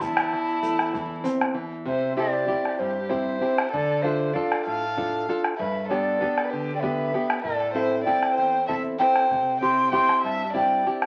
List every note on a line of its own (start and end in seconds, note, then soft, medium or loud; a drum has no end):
0.01 1.83 E2 medium
0.01 1.25 E4 medium
0.01 1.25 A5 medium
0.01 bombo rim soft
0.01 bombo low medium
0.01 shaker medium
0.17 bombo rim medium
0.17 shaker soft
0.33 0.63 E3 medium
0.33 bombo rim soft
0.48 shaker soft
0.63 0.93 A3 medium
0.63 shaker medium
0.79 bombo rim soft
0.79 shaker soft
0.93 1.24 E3 soft
0.93 bombo low medium
0.93 shaker soft
1.24 1.55 C4 medium
1.24 bombo rim soft
1.24 shaker medium
1.41 bombo rim medium
1.54 1.85 E3 soft
1.86 2.46 C3 medium
1.86 2.16 C5 medium
1.86 2.15 E5 medium
1.86 bombo rim soft
1.86 bombo low medium
2.16 2.47 C4 soft
2.16 2.47 E4 soft
2.16 2.47 G4 soft
2.16 2.80 G4 medium
2.16 2.80 D5 medium
2.16 bombo rim soft
2.48 2.98 C4 soft
2.48 2.98 E4 soft
2.48 2.98 G4 medium
2.48 bombo low medium
2.65 bombo rim soft
2.79 3.40 G2 medium
2.79 3.11 G4 medium
2.79 3.11 C5 medium
3.09 3.40 C4 soft
3.09 3.40 E4 soft
3.09 3.40 G4 medium
3.09 3.71 C5 medium
3.09 3.71 E5 medium
3.09 bombo low medium
3.41 3.66 C4 soft
3.41 3.66 E4 soft
3.41 3.67 G4 soft
3.41 bombo rim soft
3.58 bombo rim medium
3.72 4.33 D3 medium
3.72 4.03 A4 medium
3.72 4.04 D5 medium
3.72 bombo rim soft
3.72 bombo low medium
4.02 4.34 D4 soft
4.02 4.34 F4 soft
4.02 4.34 A4 medium
4.02 4.35 C5 medium
4.02 4.07 F5 medium
4.02 bombo rim soft
4.06 4.35 E5 medium
4.34 4.84 D4 soft
4.34 4.85 F4 soft
4.34 4.85 A4 soft
4.34 4.65 D5 medium
4.34 4.65 F5 medium
4.34 bombo low medium
4.52 bombo rim medium
4.65 5.27 A2 medium
4.65 5.32 F5 medium
4.65 5.31 A5 medium
4.97 5.28 D4 medium
4.97 5.28 F4 soft
4.97 5.28 A4 medium
4.97 bombo low medium
5.29 5.53 D4 soft
5.29 5.54 F4 soft
5.29 5.54 A4 soft
5.29 bombo rim soft
5.44 bombo rim medium
5.57 6.19 G2 medium
5.57 5.87 B4 medium
5.57 5.87 E5 medium
5.57 bombo rim soft
5.57 bombo low medium
5.88 6.20 B3 soft
5.88 6.21 D4 soft
5.88 6.21 G4 medium
5.88 6.46 A4 medium
5.88 6.44 D5 medium
5.88 bombo rim soft
6.21 6.71 B3 soft
6.21 6.71 D4 soft
6.21 6.71 G4 medium
6.21 bombo low medium
6.38 bombo rim medium
6.44 6.51 B4 medium
6.44 6.52 D5 medium
6.50 7.13 D3 medium
6.50 6.74 G4 medium
6.50 6.74 B4 medium
6.75 6.81 D5 medium
6.75 6.82 G5 medium
6.80 7.13 B3 soft
6.80 7.13 D4 soft
6.80 7.14 G4 soft
6.80 7.41 B4 medium
6.80 7.42 E5 medium
6.80 bombo low medium
7.14 7.39 B3 soft
7.14 7.39 D4 soft
7.14 7.39 G4 soft
7.14 bombo rim soft
7.30 bombo rim medium
7.42 8.05 A2 medium
7.42 7.72 A4 medium
7.42 7.72 D5 medium
7.42 bombo low medium
7.60 bombo rim soft
7.73 8.05 C4 soft
7.73 8.06 E4 soft
7.73 8.06 A4 soft
7.73 8.03 C5 medium
7.73 7.80 F5 medium
7.79 8.04 E5 medium
7.91 bombo rim soft
8.04 8.56 C4 soft
8.04 8.57 E4 soft
8.04 8.57 A4 medium
8.04 8.34 D5 medium
8.04 8.35 G5 medium
8.04 bombo low medium
8.23 bombo rim soft
8.35 8.98 E2 medium
8.35 8.65 C5 medium
8.35 8.66 G5 medium
8.67 8.98 C4 soft
8.67 8.99 E4 soft
8.67 9.00 A4 medium
8.67 8.82 E5 medium
8.67 8.75 A5 medium
8.67 bombo low medium
8.99 9.25 C4 soft
8.99 9.25 E4 soft
8.99 9.25 A4 soft
8.99 9.57 C5 medium
8.99 9.58 G5 loud
9.16 bombo rim medium
9.31 9.91 C3 medium
9.31 bombo rim soft
9.31 bombo low medium
9.61 9.91 C4 soft
9.61 9.91 E4 soft
9.61 9.92 G4 medium
9.61 9.90 G5 medium
9.61 9.91 C6 medium
9.61 bombo rim soft
9.92 10.42 C4 soft
9.92 10.43 E4 soft
9.92 10.43 G4 medium
9.92 10.21 G5 medium
9.92 10.22 C6 medium
9.92 bombo low medium
10.09 bombo rim medium
10.22 10.84 G2 medium
10.22 10.52 E5 medium
10.22 10.53 A5 medium
10.53 10.85 C4 soft
10.53 10.85 E4 soft
10.53 10.86 G4 medium
10.53 10.87 D5 medium
10.53 10.88 G5 medium
10.53 bombo low medium
10.86 11.06 C4 soft
10.86 11.06 E4 soft
10.86 11.06 G4 soft
10.86 bombo rim soft
11.02 bombo rim medium